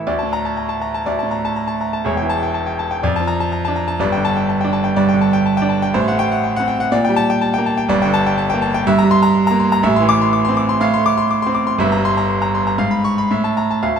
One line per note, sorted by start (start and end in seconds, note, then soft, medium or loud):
0.07 1.04 D2 medium
0.07 0.27 D5 medium
0.19 0.39 A5 medium
0.23 0.50 A2 medium
0.33 0.45 A#5 medium
0.45 0.65 A5 medium
0.57 0.70 A#5 medium
0.69 0.89 A5 medium
0.82 0.94 A#5 medium
0.94 1.14 A5 medium
1.06 2.03 D2 medium
1.06 1.26 D5 medium
1.19 1.39 A5 medium
1.23 1.49 A2 medium
1.31 1.44 A#5 medium
1.45 1.64 A5 medium
1.56 1.68 A#5 medium
1.67 1.88 A5 medium
1.81 1.93 A#5 medium
1.93 2.06 A5 medium
2.05 3.00 E1 medium
2.05 3.01 E2 medium
2.05 2.25 C#5 medium
2.17 2.37 G5 medium
2.22 2.48 E3 medium
2.30 2.42 A5 medium
2.43 2.62 G5 medium
2.54 2.67 A5 medium
2.67 2.86 G5 medium
2.79 2.91 A5 medium
2.91 3.03 G5 medium
3.03 3.98 F2 loud
3.03 3.23 D5 medium
3.16 3.36 A5 medium
3.20 3.46 F3 medium
3.28 3.40 A#5 medium
3.40 3.60 A5 medium
3.52 3.64 A#5 medium
3.65 3.94 D4 medium
3.65 3.84 A5 medium
3.76 3.89 A#5 medium
3.88 4.00 A5 medium
3.99 4.94 G1 medium
3.99 4.95 G2 loud
3.99 4.20 D5 medium
4.12 4.32 G5 medium
4.17 4.43 D3 medium
4.25 4.37 A5 loud
4.37 4.57 G5 medium
4.49 4.62 A5 medium
4.61 4.91 D4 medium
4.61 4.81 G5 medium
4.73 4.85 A5 medium
4.84 5.04 G5 medium
4.96 5.91 G2 loud
4.96 5.16 D5 loud
5.09 5.29 G5 medium
5.14 5.39 D3 medium
5.21 5.34 A5 medium
5.33 5.53 G5 loud
5.46 5.58 A5 medium
5.57 5.77 G5 loud
5.62 5.88 D4 medium
5.69 5.82 A5 medium
5.82 5.95 G5 loud
5.94 6.89 A1 medium
5.94 6.90 A2 loud
5.94 6.14 C5 medium
6.08 6.38 A3 medium
6.08 6.27 F#5 medium
6.19 6.31 G5 loud
6.32 6.51 F#5 medium
6.44 6.56 G5 medium
6.56 6.86 C4 medium
6.56 6.76 F#5 loud
6.68 6.80 G5 medium
6.80 6.93 F#5 medium
6.92 7.87 A#2 loud
6.92 7.12 D5 loud
7.05 7.24 G5 loud
7.09 7.35 G3 medium
7.16 7.29 A5 loud
7.30 7.49 G5 loud
7.42 7.54 A5 medium
7.54 7.73 G5 loud
7.58 7.84 A#3 medium
7.66 7.78 A5 medium
7.77 7.90 G5 loud
7.89 8.84 G1 loud
7.89 8.84 G2 loud
7.89 8.09 D5 loud
8.02 8.32 D3 medium
8.02 8.21 G5 loud
8.14 8.26 A5 loud
8.26 8.46 G5 loud
8.38 8.50 A5 medium
8.50 8.70 G5 loud
8.54 8.80 A#3 medium
8.62 8.74 A5 medium
8.74 8.87 G5 loud
8.87 9.81 G2 loud
8.87 9.07 E5 loud
8.98 9.18 A#5 loud
9.03 9.29 G3 medium
9.11 9.23 C6 loud
9.23 9.42 A#5 loud
9.34 9.47 C6 medium
9.47 9.77 A#3 medium
9.47 9.67 A#5 loud
9.60 9.72 C6 medium
9.72 9.84 A#5 loud
9.83 10.78 A1 loud
9.83 10.78 A2 loud
9.83 10.03 E5 loud
9.96 10.26 E3 medium
9.96 10.16 C6 medium
10.09 10.21 D6 loud
10.21 10.41 C6 medium
10.33 10.45 D6 medium
10.45 10.75 C4 medium
10.45 10.64 C6 loud
10.57 10.69 D6 medium
10.69 10.81 C6 loud
10.81 11.77 A2 loud
10.81 11.01 F5 loud
10.94 11.23 A3 medium
10.94 11.13 C6 loud
11.06 11.18 D6 loud
11.18 11.37 C6 loud
11.31 11.43 D6 medium
11.42 11.63 C6 loud
11.46 11.73 C4 medium
11.55 11.67 D6 medium
11.67 11.80 C6 medium
11.78 12.76 G1 loud
11.78 12.77 G2 loud
11.78 12.00 E5 medium
11.92 12.12 A#5 medium
11.97 12.23 G3 medium
12.05 12.17 C6 loud
12.17 12.37 A#5 medium
12.30 12.42 C6 medium
12.42 12.62 A#5 medium
12.55 12.67 C6 medium
12.67 12.80 A#5 medium
12.78 13.28 G#2 loud
12.78 12.99 F5 medium
12.91 13.12 B5 medium
13.04 13.17 C#6 loud
13.18 13.31 B5 medium
13.31 13.82 A2 loud
13.31 13.51 E5 medium
13.44 13.65 A5 medium
13.57 13.70 A#5 medium
13.71 13.83 A5 medium
13.83 13.99 D2 medium
13.83 13.99 F5 medium
13.96 13.99 A5 medium